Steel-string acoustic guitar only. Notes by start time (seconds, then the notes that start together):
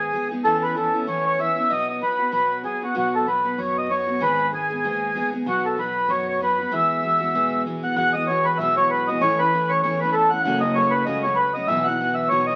Already playing: G#2 D#3 G#3 B3 D#4 G#4
0.13 G#3 B3 D#4 G#4
0.31 G#3 B3 D#4 G#4
0.45 A2 E3 B3 C#4 E4
0.75 E3 B3 C#4 E4
0.93 B3 C#4 E4
1.07 A2 E3 B3 C#4 E4
1.38 E3 B3 C#4 E4
1.56 B3 C#4 E4
1.69 B2 F#3 B3 D#4 F#4
2.01 F#3 B3 D#4 F#4
2.19 B3 D#4 F#4
2.32 B2 F#3 B3 D#4 F#4
2.63 F#3 B3 D#4 F#4
2.81 B3 D#4 F#4
2.95 B2 F#3 B3 D#4 F#4
3.26 F#3 B3 D#4 F#4
3.44 B3 D#4 F#4
3.57 B2 F#3 B3 D#4 F#4
3.89 F#3 B3 D#4 F#4
4.06 B3 D#4 F#4
4.20 G#2 D#3 G#3 B3 D#4 G#4
4.52 G#3 B3 D#4 G#4
4.70 G#3 B3 D#4 G#4
4.84 G#2 D#3 G#3 B3 D#4 G#4
5.15 G#3 B3 D#4 G#4
5.33 G#3 B3 D#4 G#4
5.46 B2 F#3 B3 D#4 F#4
5.77 F#3 B3 D#4 F#4
6.08 B2 F#3 B3 D#4 F#4
6.40 F#3 B3 D#4 F#4
6.58 B3 D#4 F#4
6.71 E2 B2 E3 G#3 B3 F#4
7.02 E3 G#3 B3 F#4
7.20 E3 G#3 B3 F#4
7.34 E2 B2 E3 G#3 B3 F#4
7.66 E3 G#3 B3 F#4
7.83 E3 G#3 B3 F#4
7.96 E2 B2 E3 G#3 B3 F#4
8.15 E3 G#3 B3 F#4
8.28 E3 G#3 B3 F#4
8.60 E2 B2 E3 G#3 B3 F#4
8.78 E3 G#3 B3 F#4
9.09 E3 G#3 B3 F#4
9.22 A2 E3 A3 C#4 E4
9.39 A3 C#4 E4
9.52 E3 A3 C#4 E4
9.83 A2 E3 A3 C#4 E4
10.01 A3 C#4 E4
10.31 A3 C#4 E4
10.46 F#2 C#3 F#3 A3 C#4 F#4
10.63 F#3 A3 C#4 F#4
10.75 F#3 A3 C#4 F#4
11.06 F#2 C#3 F#3 A3 C#4 F#4
11.24 F#3 A3 C#4 F#4
11.55 F#3 A3 C#4 F#4
11.69 B2 E3 B3 E4 F#4
11.86 B3 E4 F#4
12.00 E3 B3 E4 F#4
12.31 B3 D#4 F#4 C#5
12.48 D#4 F#4 C#5